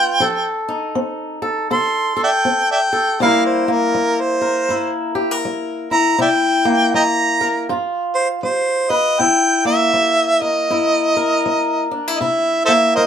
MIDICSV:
0, 0, Header, 1, 3, 480
1, 0, Start_track
1, 0, Tempo, 749064
1, 137, Time_signature, 4, 2, 24, 8
1, 8373, End_track
2, 0, Start_track
2, 0, Title_t, "Harmonica"
2, 0, Program_c, 0, 22
2, 0, Note_on_c, 0, 79, 104
2, 434, Note_off_c, 0, 79, 0
2, 1105, Note_on_c, 0, 84, 101
2, 1409, Note_off_c, 0, 84, 0
2, 1434, Note_on_c, 0, 74, 67
2, 1434, Note_on_c, 0, 76, 67
2, 1434, Note_on_c, 0, 79, 96
2, 1474, Note_off_c, 0, 76, 0
2, 1475, Note_off_c, 0, 74, 0
2, 1733, Note_off_c, 0, 79, 0
2, 1741, Note_on_c, 0, 74, 64
2, 1741, Note_on_c, 0, 76, 64
2, 1741, Note_on_c, 0, 79, 91
2, 1791, Note_off_c, 0, 74, 0
2, 1797, Note_off_c, 0, 76, 0
2, 2046, Note_off_c, 0, 79, 0
2, 2066, Note_on_c, 0, 77, 93
2, 2213, Note_off_c, 0, 77, 0
2, 2217, Note_on_c, 0, 72, 83
2, 2379, Note_on_c, 0, 70, 95
2, 2388, Note_off_c, 0, 72, 0
2, 2695, Note_on_c, 0, 72, 98
2, 2704, Note_off_c, 0, 70, 0
2, 3158, Note_off_c, 0, 72, 0
2, 3794, Note_on_c, 0, 82, 104
2, 3970, Note_off_c, 0, 82, 0
2, 3981, Note_on_c, 0, 74, 67
2, 3981, Note_on_c, 0, 76, 67
2, 3981, Note_on_c, 0, 79, 96
2, 4025, Note_off_c, 0, 76, 0
2, 4037, Note_off_c, 0, 74, 0
2, 4441, Note_off_c, 0, 79, 0
2, 4454, Note_on_c, 0, 75, 67
2, 4454, Note_on_c, 0, 79, 67
2, 4454, Note_on_c, 0, 82, 95
2, 4501, Note_off_c, 0, 79, 0
2, 4506, Note_off_c, 0, 75, 0
2, 4918, Note_off_c, 0, 82, 0
2, 5223, Note_on_c, 0, 72, 83
2, 5307, Note_off_c, 0, 72, 0
2, 5407, Note_on_c, 0, 72, 94
2, 5705, Note_on_c, 0, 75, 98
2, 5715, Note_off_c, 0, 72, 0
2, 5896, Note_on_c, 0, 79, 98
2, 5905, Note_off_c, 0, 75, 0
2, 6188, Note_off_c, 0, 79, 0
2, 6195, Note_on_c, 0, 76, 103
2, 6676, Note_on_c, 0, 75, 94
2, 6685, Note_off_c, 0, 76, 0
2, 7635, Note_off_c, 0, 75, 0
2, 7787, Note_on_c, 0, 75, 80
2, 7819, Note_on_c, 0, 76, 92
2, 7828, Note_off_c, 0, 75, 0
2, 8106, Note_off_c, 0, 76, 0
2, 8110, Note_on_c, 0, 69, 79
2, 8110, Note_on_c, 0, 72, 79
2, 8110, Note_on_c, 0, 76, 112
2, 8149, Note_off_c, 0, 72, 0
2, 8154, Note_off_c, 0, 69, 0
2, 8286, Note_off_c, 0, 76, 0
2, 8303, Note_on_c, 0, 70, 68
2, 8303, Note_on_c, 0, 72, 68
2, 8303, Note_on_c, 0, 75, 97
2, 8350, Note_off_c, 0, 70, 0
2, 8351, Note_off_c, 0, 72, 0
2, 8373, Note_off_c, 0, 75, 0
2, 8373, End_track
3, 0, Start_track
3, 0, Title_t, "Steel-string acoustic guitar"
3, 0, Program_c, 1, 25
3, 0, Note_on_c, 1, 55, 71
3, 0, Note_on_c, 1, 59, 58
3, 0, Note_on_c, 1, 65, 57
3, 0, Note_on_c, 1, 71, 66
3, 102, Note_off_c, 1, 55, 0
3, 117, Note_off_c, 1, 65, 0
3, 118, Note_off_c, 1, 59, 0
3, 120, Note_off_c, 1, 71, 0
3, 130, Note_on_c, 1, 53, 80
3, 137, Note_on_c, 1, 69, 74
3, 439, Note_on_c, 1, 63, 65
3, 574, Note_off_c, 1, 53, 0
3, 611, Note_on_c, 1, 60, 69
3, 903, Note_off_c, 1, 69, 0
3, 911, Note_on_c, 1, 69, 67
3, 1054, Note_off_c, 1, 60, 0
3, 1089, Note_off_c, 1, 69, 0
3, 1094, Note_on_c, 1, 48, 68
3, 1096, Note_on_c, 1, 69, 70
3, 1380, Note_off_c, 1, 69, 0
3, 1387, Note_on_c, 1, 69, 69
3, 1535, Note_off_c, 1, 48, 0
3, 1569, Note_on_c, 1, 60, 69
3, 1865, Note_off_c, 1, 69, 0
3, 1875, Note_on_c, 1, 69, 62
3, 2012, Note_off_c, 1, 60, 0
3, 2034, Note_off_c, 1, 63, 0
3, 2034, Note_off_c, 1, 69, 0
3, 2052, Note_on_c, 1, 48, 85
3, 2056, Note_on_c, 1, 55, 62
3, 2061, Note_on_c, 1, 58, 62
3, 2066, Note_on_c, 1, 64, 61
3, 2070, Note_on_c, 1, 70, 74
3, 2348, Note_off_c, 1, 58, 0
3, 2358, Note_on_c, 1, 58, 64
3, 2493, Note_off_c, 1, 48, 0
3, 2525, Note_off_c, 1, 55, 0
3, 2528, Note_on_c, 1, 55, 64
3, 2821, Note_off_c, 1, 70, 0
3, 2829, Note_on_c, 1, 70, 63
3, 2971, Note_off_c, 1, 55, 0
3, 3005, Note_off_c, 1, 64, 0
3, 3005, Note_on_c, 1, 43, 74
3, 3013, Note_on_c, 1, 64, 67
3, 3298, Note_off_c, 1, 70, 0
3, 3301, Note_on_c, 1, 67, 69
3, 3404, Note_off_c, 1, 67, 0
3, 3404, Note_on_c, 1, 70, 58
3, 3449, Note_off_c, 1, 43, 0
3, 3492, Note_on_c, 1, 55, 69
3, 3781, Note_off_c, 1, 64, 0
3, 3788, Note_on_c, 1, 64, 63
3, 3933, Note_off_c, 1, 55, 0
3, 3950, Note_off_c, 1, 64, 0
3, 3963, Note_on_c, 1, 48, 81
3, 3967, Note_on_c, 1, 64, 65
3, 3973, Note_off_c, 1, 70, 0
3, 4255, Note_off_c, 1, 58, 0
3, 4262, Note_on_c, 1, 58, 67
3, 4409, Note_off_c, 1, 48, 0
3, 4448, Note_on_c, 1, 55, 67
3, 4748, Note_on_c, 1, 70, 61
3, 4892, Note_off_c, 1, 55, 0
3, 4907, Note_off_c, 1, 64, 0
3, 4910, Note_off_c, 1, 70, 0
3, 4929, Note_on_c, 1, 43, 84
3, 4930, Note_off_c, 1, 58, 0
3, 4934, Note_on_c, 1, 65, 69
3, 5374, Note_off_c, 1, 43, 0
3, 5402, Note_on_c, 1, 55, 67
3, 5704, Note_on_c, 1, 71, 70
3, 5851, Note_off_c, 1, 55, 0
3, 5870, Note_off_c, 1, 71, 0
3, 5871, Note_off_c, 1, 65, 0
3, 5892, Note_on_c, 1, 48, 71
3, 5897, Note_on_c, 1, 64, 63
3, 6184, Note_on_c, 1, 58, 56
3, 6336, Note_off_c, 1, 48, 0
3, 6367, Note_on_c, 1, 55, 62
3, 6675, Note_on_c, 1, 70, 54
3, 6814, Note_off_c, 1, 55, 0
3, 6859, Note_on_c, 1, 43, 67
3, 6860, Note_off_c, 1, 64, 0
3, 6862, Note_on_c, 1, 64, 63
3, 7152, Note_off_c, 1, 70, 0
3, 7155, Note_on_c, 1, 70, 71
3, 7302, Note_off_c, 1, 43, 0
3, 7342, Note_on_c, 1, 55, 65
3, 7632, Note_off_c, 1, 64, 0
3, 7634, Note_on_c, 1, 62, 53
3, 7738, Note_off_c, 1, 62, 0
3, 7738, Note_on_c, 1, 64, 50
3, 7784, Note_off_c, 1, 55, 0
3, 7821, Note_off_c, 1, 64, 0
3, 7822, Note_on_c, 1, 48, 80
3, 7828, Note_on_c, 1, 64, 60
3, 7841, Note_off_c, 1, 70, 0
3, 8123, Note_off_c, 1, 58, 0
3, 8126, Note_on_c, 1, 58, 59
3, 8264, Note_off_c, 1, 48, 0
3, 8313, Note_on_c, 1, 55, 62
3, 8373, Note_off_c, 1, 55, 0
3, 8373, Note_off_c, 1, 58, 0
3, 8373, Note_off_c, 1, 64, 0
3, 8373, End_track
0, 0, End_of_file